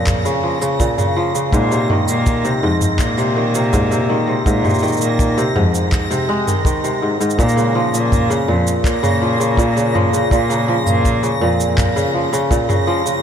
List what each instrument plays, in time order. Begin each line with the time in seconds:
Already playing: kora A#2, synth texture A#6
0.07 kick, clap, mid tom, shaker
0.25 kora C#3, shaker
0.43 kora F3
0.61 kora C#3, shaker
0.80 kora A#2, kick, shaker
0.98 kora C#3, mid tom, shaker
1.16 kora F3
1.35 kora C#3, shaker
1.53 kora G#2, cello A#2, kick, shaker
1.71 kora C3, shaker
1.90 kora D#3, mid tom
2.08 cello A#2, shaker
2.27 kick, shaker
2.45 kora C3, shaker
2.63 cello F2, kora G#2
2.81 mid tom, shaker
2.99 cello A#2, kick, clap, shaker
3.18 kora C3, shaker
3.36 kora D#3
3.55 kora C3, shaker
3.73 kora G#2, kick, mid tom, shaker
3.91 kora C3, shaker
4.09 kora D#3
4.28 kora C3
4.46 kora G#2, cello A#2, kick, shaker
4.64 kora C3, mid tom, shaker
4.70 shaker
4.74 shaker
4.79 kora D#3, shaker
4.83 shaker
4.88 shaker
4.92 shaker
4.97 cello A#2, shaker
5.01 shaker
5.19 kick, shaker
5.38 kora C3, shaker
5.56 cello F2, kora G#2, mid tom
5.75 shaker
5.92 kick, clap, shaker
6.11 kora C3, shaker
6.29 kora G#3
6.47 kora D#3, mid tom, shaker
6.65 kora D#3, kick, shaker
6.84 kora C3, shaker
7.02 kora G#2
7.21 kora G#2, shaker
7.30 shaker
7.39 kora A#2, cello A#2, kick, shaker
7.49 shaker
7.57 kora C#3, shaker
7.75 kora F3
7.94 cello A#2, shaker
8.12 kick, mid tom, shaker
8.30 kora C#3, shaker
8.48 cello F2, kora A#2
8.67 shaker
8.84 cello A#2, kick, clap, shaker
9.03 kora C#3, mid tom, shaker
9.22 kora F3
9.40 kora C#3, shaker
9.57 kora A#2, kick, shaker
9.76 kora C#3, shaker
9.95 kora F3, mid tom
10.13 kora C#3, shaker
10.31 cello A#2, kora A#2, kick, shaker
10.50 kora C#3, shaker
10.68 kora F3
10.86 cello A#2, mid tom, shaker
11.05 kick, shaker
11.23 kora C#3, shaker
11.41 cello F2, kora A#2
11.60 shaker
11.78 kick, clap, mid tom, shaker
11.96 kora C#3, shaker
12.14 kora F3
12.33 kora C#3, shaker
12.51 kora A#2, kick, shaker
12.69 kora C#3, mid tom, shaker
12.87 kora F3
13.06 kora C#3, shaker